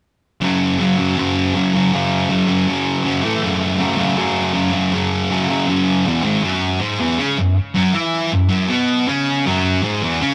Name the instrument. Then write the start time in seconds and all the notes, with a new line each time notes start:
distorted electric guitar
0.41 F#2 C#3 F#3
0.78 F#2 C#3 F#3
0.97 F#2 C#3 F#3
1.17 F#2 C#3 F#3
1.55 F#2 C#3 F#3
1.73 F#2 C#3 F#3
1.92 F#2 C#3 F#3
2.29 F#2 C#3 F#3
2.47 F#2 C#3 F#3
2.68 F#2 C#3 F#3
3.03 F#2 C#3 F#3
3.23 A2 E3 A3
3.42 F#2 C#3 F#3
3.78 F#2 C#3 F#3
3.96 F#2 C#3 F#3
4.16 F#2 C#3 F#3
4.54 F#2 C#3 F#3
4.73 F#2 C#3 F#3
4.92 F#2 C#3 F#3
5.31 F#2 C#3 F#3
5.49 F#2 C#3 F#3
5.67 F#2 C#3 F#3
6.06 E2 B2 E3
6.23 G#2 D#3 G#3
6.43 F#2 F#3
6.81 G#2 G#3
7.00 E2 E3
7.18 C#3 C#4
7.38 F#2
7.75 F#2 F#3
7.93 E3 E4
8.31 F#2
8.49 F#2 F#3
8.68 B2 B3
9.08 C#3 C#4
9.46 F#2 F#3
9.83 G#2 G#3
10.02 E2 E3
10.21 C#3 C#4